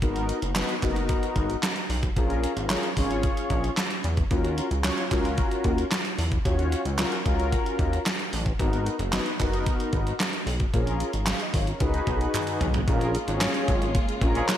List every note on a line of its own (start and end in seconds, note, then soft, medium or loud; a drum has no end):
0.01 0.32 G#1 loud
0.01 0.39 B3 medium
0.01 0.39 D#4 medium
0.01 0.39 F#4 medium
0.01 0.39 A#4 medium
0.01 kick loud
0.01 closed hi-hat medium
0.16 closed hi-hat medium
0.29 closed hi-hat medium
0.42 0.62 F#1 loud
0.42 closed hi-hat medium
0.55 0.74 B3 medium
0.55 0.74 D#4 medium
0.55 0.74 F#4 medium
0.55 0.74 B4 loud
0.55 snare loud
0.55 clap medium
0.55 closed hi-hat loud
0.69 closed hi-hat soft
0.82 1.12 F#1 medium
0.82 1.56 B3 medium
0.82 1.56 D#4 medium
0.82 1.56 F#4 medium
0.82 1.56 A#4 loud
0.82 kick loud
0.82 clap medium
0.82 closed hi-hat medium
0.96 closed hi-hat medium
1.09 kick loud
1.09 closed hi-hat medium
1.23 closed hi-hat medium
1.36 1.56 G#1 loud
1.36 kick medium
1.36 closed hi-hat medium
1.50 closed hi-hat medium
1.63 snare loud
1.63 clap medium
1.63 closed hi-hat loud
1.76 closed hi-hat medium
1.90 2.09 B1 loud
1.90 open hi-hat medium
2.03 kick medium
2.03 closed hi-hat medium
2.16 2.46 A#1 loud
2.16 2.53 C#4 medium
2.16 2.53 F4 medium
2.16 2.53 G#4 medium
2.16 2.53 A#4 medium
2.16 kick loud
2.16 closed hi-hat medium
2.30 closed hi-hat soft
2.44 closed hi-hat medium
2.57 2.76 G#1 medium
2.57 closed hi-hat medium
2.70 2.88 C#4 medium
2.70 2.88 F4 medium
2.70 2.89 G#4 medium
2.70 2.89 A#4 medium
2.70 snare loud
2.70 clap loud
2.70 clap medium
2.70 closed hi-hat loud
2.83 closed hi-hat medium
2.97 3.27 G#1 medium
2.97 3.70 C#4 medium
2.97 3.71 F4 medium
2.97 3.70 G#4 medium
2.97 3.71 C#5 medium
2.97 kick loud
2.97 open hi-hat medium
3.11 closed hi-hat medium
3.23 kick loud
3.23 closed hi-hat medium
3.37 closed hi-hat medium
3.50 3.70 A#1 medium
3.50 kick medium
3.50 closed hi-hat medium
3.64 closed hi-hat medium
3.77 snare loud
3.77 clap medium
3.77 closed hi-hat medium
3.90 closed hi-hat medium
4.04 4.24 E2 loud
4.04 closed hi-hat medium
4.17 kick loud
4.17 closed hi-hat medium
4.31 4.61 D#2 loud
4.31 4.67 C#4 medium
4.31 4.68 F4 medium
4.31 4.68 F#4 medium
4.31 4.68 A#4 medium
4.31 kick loud
4.31 closed hi-hat medium
4.45 closed hi-hat medium
4.58 closed hi-hat medium
4.71 4.91 C#2 medium
4.71 closed hi-hat medium
4.84 5.03 C#4 medium
4.84 5.03 F4 medium
4.84 5.03 F#4 medium
4.84 5.03 C#5 loud
4.84 snare loud
4.84 clap medium
4.84 closed hi-hat loud
4.98 closed hi-hat medium
5.11 5.41 C#2 medium
5.11 5.84 C#4 medium
5.11 5.85 F4 medium
5.11 5.85 F#4 medium
5.11 5.85 A#4 medium
5.11 kick loud
5.11 clap medium
5.11 closed hi-hat medium
5.25 closed hi-hat medium
5.38 kick loud
5.38 closed hi-hat medium
5.51 closed hi-hat medium
5.64 5.84 D#2 medium
5.64 kick loud
5.64 closed hi-hat medium
5.78 closed hi-hat medium
5.91 snare loud
5.91 clap medium
5.91 clap loud
5.91 closed hi-hat medium
6.05 closed hi-hat medium
6.18 6.38 E2 loud
6.18 open hi-hat medium
6.32 kick medium
6.32 closed hi-hat medium
6.45 6.75 D#2 loud
6.45 6.82 C#4 medium
6.45 6.82 F4 medium
6.45 6.82 F#4 medium
6.45 6.82 C#5 medium
6.45 kick loud
6.45 closed hi-hat medium
6.59 closed hi-hat soft
6.72 closed hi-hat medium
6.85 7.05 C#2 medium
6.85 closed hi-hat medium
6.98 7.17 C#4 medium
6.98 7.17 F4 medium
6.98 7.17 F#4 medium
6.98 7.18 A#4 medium
6.98 snare loud
6.98 clap medium
6.98 closed hi-hat loud
7.12 closed hi-hat medium
7.25 7.55 C#2 medium
7.25 7.99 C#4 medium
7.25 7.99 F4 medium
7.25 7.99 F#4 medium
7.25 7.99 A#4 loud
7.25 kick loud
7.25 closed hi-hat medium
7.40 closed hi-hat medium
7.52 kick loud
7.52 closed hi-hat medium
7.66 closed hi-hat medium
7.79 7.99 D#2 medium
7.79 kick medium
7.79 closed hi-hat medium
7.93 closed hi-hat medium
8.06 snare loud
8.06 clap medium
8.06 closed hi-hat medium
8.19 closed hi-hat medium
8.33 8.53 A1 medium
8.33 open hi-hat medium
8.46 kick medium
8.46 closed hi-hat medium
8.59 8.89 G#1 loud
8.59 8.96 B3 medium
8.59 8.96 D#4 medium
8.59 8.96 F#4 medium
8.59 8.96 A#4 medium
8.59 kick loud
8.59 closed hi-hat medium
8.73 closed hi-hat medium
8.86 closed hi-hat medium
8.99 9.19 F#1 loud
8.99 closed hi-hat medium
9.13 9.31 B3 medium
9.13 9.31 D#4 medium
9.13 9.32 F#4 medium
9.13 9.32 B4 medium
9.13 snare loud
9.13 clap medium
9.13 closed hi-hat loud
9.26 closed hi-hat medium
9.40 9.70 F#1 medium
9.40 10.13 B3 medium
9.40 10.13 D#4 medium
9.40 10.13 F#4 medium
9.40 10.14 A#4 medium
9.40 kick loud
9.40 clap medium
9.40 closed hi-hat medium
9.53 closed hi-hat medium
9.66 kick loud
9.66 closed hi-hat medium
9.80 closed hi-hat medium
9.93 10.13 G#1 loud
9.93 kick medium
9.93 closed hi-hat medium
10.07 closed hi-hat medium
10.20 snare loud
10.20 clap medium
10.20 closed hi-hat medium
10.33 closed hi-hat medium
10.46 10.66 B1 loud
10.46 open hi-hat medium
10.60 kick medium
10.60 closed hi-hat soft
10.73 11.03 A#1 loud
10.73 11.10 C#4 medium
10.73 11.10 F4 medium
10.73 11.11 G#4 medium
10.73 11.11 A#4 medium
10.73 kick loud
10.73 closed hi-hat medium
10.87 closed hi-hat medium
11.00 closed hi-hat medium
11.13 11.34 G#1 medium
11.13 closed hi-hat medium
11.27 11.40 G#4 medium
11.27 11.40 F5 medium
11.27 snare loud
11.27 clap medium
11.27 closed hi-hat loud
11.40 11.54 D#5 medium
11.40 closed hi-hat soft
11.54 11.74 G#1 medium
11.54 11.67 F4 medium
11.54 11.67 C#5 medium
11.54 kick loud
11.54 open hi-hat medium
11.67 11.93 C#4 medium
11.67 11.93 A#4 medium
11.67 closed hi-hat medium
11.80 12.01 C#2 loud
11.80 12.66 D#4 medium
11.80 12.66 F#4 medium
11.80 12.66 G#4 medium
11.80 12.66 B4 loud
11.80 kick loud
11.80 closed hi-hat medium
11.94 closed hi-hat medium
12.07 12.27 B1 medium
12.07 kick loud
12.07 closed hi-hat medium
12.21 closed hi-hat medium
12.34 clap medium
12.34 closed hi-hat medium
12.34 high tom medium
12.47 closed hi-hat medium
12.61 12.81 B1 medium
12.61 closed hi-hat medium
12.61 mid tom medium
12.74 closed hi-hat medium
12.74 floor tom medium
12.87 13.17 A#1 loud
12.87 14.57 C#3 medium
12.87 14.57 G#3 medium
12.87 14.57 A#3 medium
12.87 13.15 C#4 medium
12.87 13.15 F4 medium
12.87 14.57 F4 medium
12.87 13.16 G#4 medium
12.87 13.16 A#4 medium
12.87 kick loud
12.87 closed hi-hat medium
13.01 closed hi-hat medium
13.15 closed hi-hat medium
13.27 13.48 G#1 medium
13.27 13.92 C#4 medium
13.27 13.92 F4 medium
13.27 13.92 G#4 medium
13.27 13.92 C#5 medium
13.27 closed hi-hat medium
13.41 snare loud
13.41 clap loud
13.41 closed hi-hat loud
13.54 closed hi-hat medium
13.68 13.98 G#1 medium
13.68 kick loud
13.68 closed hi-hat medium
13.82 closed hi-hat medium
13.95 kick loud
13.95 closed hi-hat medium
14.09 closed hi-hat medium
14.21 14.41 A#1 loud
14.21 14.57 C#4 medium
14.21 14.57 F4 medium
14.21 14.57 G#4 medium
14.21 14.57 A#4 loud
14.21 kick loud
14.21 closed hi-hat medium
14.35 14.46 F3 medium
14.35 14.46 G#3 medium
14.35 14.46 C#4 medium
14.35 14.46 G#4 medium
14.35 closed hi-hat medium
14.48 snare loud
14.48 clap medium
14.48 clap loud
14.48 closed hi-hat loud